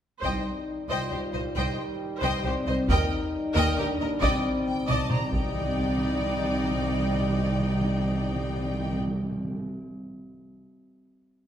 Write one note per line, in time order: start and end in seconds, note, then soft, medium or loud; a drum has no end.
0.21 0.31 C2 soft
0.21 0.32 C2 medium
0.21 0.86 C3 soft
0.21 2.86 D#3 soft
0.21 2.86 G3 soft
0.21 0.85 D#4 soft
0.21 0.43 C5 soft
0.21 0.44 D#5 soft
0.21 0.44 G5 soft
0.21 taiko soft
0.89 0.97 C2 soft
0.89 0.98 C2 soft
0.89 1.56 F4 medium
0.89 1.09 C5 soft
0.89 1.10 D#5 soft
0.89 1.11 G5 soft
1.10 1.19 C2 soft
1.10 1.21 C2 soft
1.10 1.20 G4 soft
1.10 1.18 C5 soft
1.10 1.19 C5 soft
1.33 1.42 C2 soft
1.33 1.41 C5 soft
1.33 1.42 C5 soft
1.33 1.41 D#5 soft
1.55 1.64 C2 soft
1.55 1.64 C2 medium
1.55 2.43 G4 medium
1.55 1.77 C5 soft
1.55 1.78 D#5 soft
1.55 1.76 G5 medium
2.21 2.30 C2 medium
2.21 2.42 C5 medium
2.21 2.44 D#5 medium
2.21 2.43 G5 medium
2.44 2.52 C2 soft
2.44 2.53 C2 soft
2.44 2.89 C4 medium
2.44 2.53 G4 soft
2.44 2.53 C5 soft
2.44 2.54 C5 soft
2.67 2.75 C2 soft
2.67 2.77 C5 soft
2.67 2.75 D#5 medium
2.88 2.97 D#2 medium
2.88 5.30 D#3 medium
2.88 5.30 G3 medium
2.88 3.78 D#4 medium
2.88 3.10 A#4 medium
2.88 3.11 D#5 medium
2.88 3.10 G5 medium
2.88 taiko medium
3.55 3.64 D#2 medium
3.55 3.76 A#4 medium
3.55 3.76 D#5 medium
3.55 3.78 G5 medium
3.55 taiko medium
3.77 3.86 D#2 soft
3.77 3.86 D#2 medium
3.77 4.22 D4 medium
3.77 3.87 G4 medium
3.77 3.87 A#4 medium
4.00 4.08 D#2 soft
4.00 4.09 D#2 soft
4.00 4.09 A#4 soft
4.00 4.10 A#4 soft
4.00 4.10 D#5 soft
4.21 4.29 C2 medium
4.21 4.30 C2 medium
4.21 5.12 C4 medium
4.21 4.43 D5 medium
4.21 4.43 D#5 medium
4.21 4.44 G5 medium
4.21 taiko medium
4.45 4.51 C3 soft
4.53 4.60 C3 soft
4.61 4.67 C3 soft
4.67 4.74 C3 soft
4.67 4.88 G5 medium
4.75 4.81 C3 soft
4.82 4.89 C3 medium
4.87 4.96 C2 medium
4.87 4.97 C2 medium
4.87 5.09 D5 soft
4.87 5.09 D#5 medium
4.87 5.11 A5 medium
4.87 taiko mid medium
4.96 5.03 C3 medium
5.04 5.12 C3 medium
5.10 5.19 C2 soft
5.10 5.20 C2 soft
5.10 5.20 C3 medium
5.10 5.18 C5 soft
5.10 5.19 D5 soft
5.10 5.33 A#5 medium
5.10 taiko mid medium
5.21 5.26 C3 medium
5.27 5.32 C3 medium
5.32 8.97 C2 soft
5.32 5.40 C3 medium
5.32 8.97 D#3 medium
5.32 8.96 G3 medium
5.32 8.97 C4 medium
5.32 8.98 D#4 soft
5.32 8.97 D5 medium
5.32 8.97 G5 soft
5.32 taiko medium
5.40 5.47 C3 medium
5.47 5.54 C3 medium
5.54 5.61 C3 medium
5.61 5.69 C3 medium
5.69 5.76 C3 medium
5.76 5.83 C3 medium
5.84 5.91 C3 medium
5.91 5.97 C3 medium
5.97 6.04 C3 medium
6.04 6.11 C3 medium
6.11 6.19 C3 medium
6.19 6.27 C3 medium
6.27 6.34 C3 medium
6.35 6.42 C3 medium
6.42 6.49 C3 medium
6.49 6.56 C3 medium
6.56 6.63 C3 medium
6.63 6.70 C3 medium
6.70 6.78 C3 medium
6.78 6.85 C3 medium
6.85 6.92 C3 medium
6.92 7.00 C3 medium
7.00 7.07 C3 medium
7.07 7.14 C3 medium
7.15 7.22 C3 medium
7.22 7.30 C3 medium
7.30 7.37 C3 medium
7.38 7.45 C3 medium
7.45 7.53 C3 medium
7.53 7.60 C3 medium
7.60 7.67 C3 medium
7.67 7.74 C3 medium
7.74 7.81 C3 medium
7.81 7.88 C3 medium
7.88 7.96 C3 medium
7.96 8.03 C3 medium
8.03 8.10 C3 medium
8.11 8.18 C3 medium
8.19 8.26 C3 medium
8.27 8.34 C3 medium
8.34 8.41 C3 medium
8.42 8.49 C3 medium
8.49 8.56 C3 medium
8.56 8.64 C3 medium
8.64 8.71 C3 medium
8.71 8.78 C3 medium
8.78 8.85 C3 medium
8.85 8.92 C3 medium
8.92 9.00 C3 medium
9.00 9.07 C3 medium
9.07 9.14 C3 medium
9.14 9.22 C3 medium
9.22 9.29 C3 medium
9.30 9.37 C3 medium
9.37 9.44 C3 medium
9.44 9.51 C3 medium
9.51 9.59 C3 medium
9.59 9.66 C3 medium